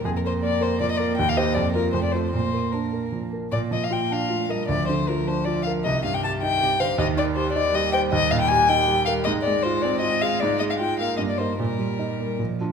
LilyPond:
<<
  \new Staff \with { instrumentName = "Violin" } { \time 3/4 \key bes \mixolydian \tempo 4 = 156 aes'16 bes'16 c''8 d''8 c''8 d''16 ees''16 d''8 | \key bes \major g''16 f''16 ees''8 d''8 bes'8 c''16 d''16 c''8 | c''4 bes'4 r4 | d''8 ees''16 f''16 g''8 f''4 ees''8 |
d''8 c''8 bes'8 c''8 d''8 f''8 | ees''8 f''16 g''16 a''8 g''4 f''8 | ees''8 d''8 c''8 d''8 ees''8 g''8 | \key ees \major ees''8 f''16 g''16 aes''8 g''4 f''8 |
ees''8 d''8 c''8 d''8 ees''8 f''8 | d''8 ees''16 f''16 g''8 f''8 ees''16 d''16 c''8 | bes'2 r4 | }
  \new Staff \with { instrumentName = "Grand piano" } { \time 3/4 \key bes \mixolydian f,8 bes'8 bes8 bes'8 f8 bes'8 | \key bes \major ees,8 <g' c''>8 f,8 <f' bes'>8 f,8 <f' a'>8 | bes,8 bes'8 d'8 bes'8 f8 bes'8 | bes,8 f8 f'8 d'8 f'8 bes'8 |
d,8 d8 f'8 d'8 f'8 bes'8 | c,8 g,8 g'8 ees'8 g'8 c''8 | ees,8 ees8 g'8 ees'8 g'8 c''8 | \key ees \major ees,8 bes,8 g'8 ees'8 g'8 bes'8 |
aes,8 aes8 f'8 c'8 f'8 aes'8 | aes,8 aes8 f'8 bes8 g,8 <ees' bes'>8 | bes,8 g8 ees'8 bes8 bes,8 <d' f'>8 | }
  \new Staff \with { instrumentName = "Cello" } { \clef bass \time 3/4 \key bes \mixolydian bes2.~ | \key bes \major bes2 a4 | bes2~ bes8 r8 | bes4 bes4 a8 g8 |
f4 f2 | ees2 c8 d8 | ees2 g4~ | \key ees \major g2 g4 |
aes2.~ | aes2 bes4 | g2 f8 r8 | }
>>